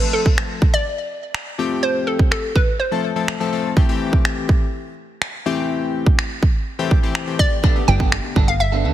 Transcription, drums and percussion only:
0.26 kick
0.38 finger snap
0.62 kick
1.34 finger snap
2.19 kick
2.32 finger snap
2.56 kick
3.28 finger snap
3.77 kick
4.13 kick
4.25 finger snap
4.49 kick
5.22 finger snap
6.06 kick
6.19 finger snap
6.43 kick
6.91 kick
7.15 finger snap
7.39 kick
7.64 kick
8.00 kick
8.12 finger snap
8.36 kick

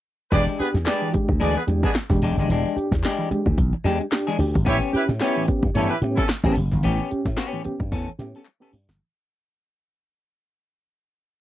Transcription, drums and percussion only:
0.32 kick, closed hi-hat
0.48 closed hi-hat
0.60 closed hi-hat
0.75 snare
0.86 snare, clap, closed hi-hat
1.14 kick, closed hi-hat
1.29 kick
1.41 closed hi-hat
1.68 closed hi-hat
1.83 kick, closed hi-hat
1.95 snare, clap, closed hi-hat
2.10 kick, snare
2.22 open hi-hat
2.38 snare
2.50 closed hi-hat
2.66 closed hi-hat
2.78 closed hi-hat
2.92 kick, snare
3.03 snare, clap, closed hi-hat
3.31 closed hi-hat
3.46 kick
3.58 kick, closed hi-hat
3.85 snare, closed hi-hat
4.01 closed hi-hat
4.12 snare, clap, closed hi-hat
4.28 snare
4.39 open hi-hat
4.55 kick
4.66 kick, closed hi-hat
4.82 closed hi-hat
4.95 closed hi-hat
5.09 snare
5.20 snare, clap, closed hi-hat
5.48 kick, closed hi-hat
5.63 kick
5.75 closed hi-hat
6.02 closed hi-hat
6.17 kick, closed hi-hat
6.29 snare, clap, closed hi-hat
6.44 kick, snare
6.55 open hi-hat
6.72 snare
6.83 closed hi-hat
6.99 closed hi-hat
7.11 closed hi-hat
7.25 kick, snare
7.37 snare, clap, closed hi-hat
7.64 closed hi-hat
7.80 kick
7.92 kick, closed hi-hat
8.19 snare, closed hi-hat
8.35 closed hi-hat
8.45 clap, closed hi-hat
8.73 open hi-hat
8.89 snare

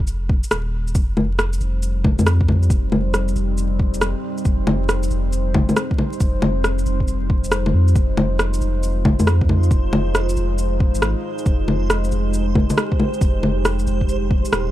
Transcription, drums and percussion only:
0.07 shaker
0.29 kick
0.44 shaker
0.51 cross-stick, shaker
0.88 shaker
0.95 kick, shaker
1.17 low bongo
1.39 cross-stick, shaker
1.53 shaker
1.61 shaker
1.83 shaker
2.04 kick, low bongo
2.19 low bongo, shaker
2.26 cross-stick, shaker
2.41 kick
2.48 low bongo
2.63 shaker
2.70 kick, shaker
2.92 low bongo
3.14 cross-stick, shaker
3.28 shaker
3.36 shaker
3.58 shaker
3.79 kick
3.94 shaker
4.01 cross-stick, shaker
4.38 shaker
4.45 kick, shaker
4.67 low bongo
4.89 cross-stick, shaker
5.03 shaker
5.11 shaker
5.33 shaker
5.54 kick, low bongo
5.69 low bongo, shaker
5.76 cross-stick, shaker
5.91 kick
5.98 low bongo
6.13 shaker
6.20 kick, shaker
6.42 low bongo
6.64 cross-stick, shaker
6.79 shaker
6.86 shaker
7.00 kick
7.08 shaker
7.30 kick
7.44 shaker
7.52 cross-stick, shaker
7.66 low bongo
7.88 shaker
7.95 kick, shaker
8.17 low bongo
8.39 cross-stick, shaker
8.54 shaker
8.61 shaker
8.83 shaker
9.05 kick, low bongo
9.20 low bongo, shaker
9.27 cross-stick, shaker
9.41 kick
9.49 low bongo
9.63 shaker
9.71 kick, shaker
9.93 low bongo
10.15 cross-stick, shaker
10.29 shaker
10.37 shaker
10.58 shaker
10.80 kick
10.95 shaker
11.02 cross-stick, shaker
11.38 shaker
11.46 kick, shaker
11.68 low bongo
11.90 cross-stick, shaker
12.04 shaker
12.12 shaker
12.34 shaker
12.55 kick, low bongo
12.70 low bongo, shaker
12.78 cross-stick, shaker
12.92 kick
13.00 low bongo
13.14 shaker
13.21 kick, shaker
13.43 low bongo
13.65 cross-stick, shaker
13.79 shaker
13.87 shaker
14.01 kick
14.09 shaker
14.31 kick
14.45 shaker
14.53 cross-stick, shaker

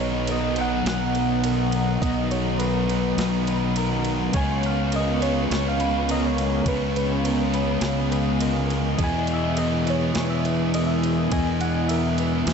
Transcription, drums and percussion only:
0.27 ride
0.56 ride
0.86 snare, ride
1.15 ride
1.44 ride
1.72 ride
2.02 kick, ride
2.31 ride
2.60 ride
2.89 ride
3.18 snare, ride
3.47 ride
3.76 ride
4.05 ride
4.33 kick, ride
4.63 ride
4.92 ride
5.22 ride
5.51 snare, ride
5.80 ride
6.09 ride
6.38 snare, ride
6.66 kick, ride
6.96 ride
7.25 ride
7.54 ride
7.81 snare, ride
8.12 ride
8.41 ride
8.70 snare, ride
8.99 kick, ride
9.27 ride
9.57 ride
9.87 ride
10.15 snare, ride
10.45 ride
10.74 ride
11.04 ride
11.32 kick, ride
11.61 ride
11.89 ride
12.18 ride
12.47 snare, ride

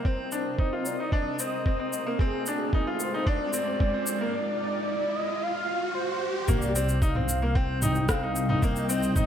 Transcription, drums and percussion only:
0.05 kick
0.32 shaker
0.59 kick
0.85 shaker
1.12 kick
1.39 shaker
1.66 kick
1.93 shaker
2.19 kick
2.46 shaker
2.73 kick
3.00 shaker
3.27 kick
3.53 shaker
3.80 kick
4.06 shaker
6.48 kick, mid tom, shaker
6.62 shaker
6.75 shaker
6.89 shaker
7.02 kick, shaker
7.15 mid tom
7.29 shaker
7.56 kick
7.82 mid tom, shaker
7.95 shaker
8.09 kick, cross-stick, shaker
8.36 shaker
8.49 mid tom
8.62 kick, shaker
8.76 shaker
8.89 shaker
9.03 shaker
9.16 kick, mid tom, shaker

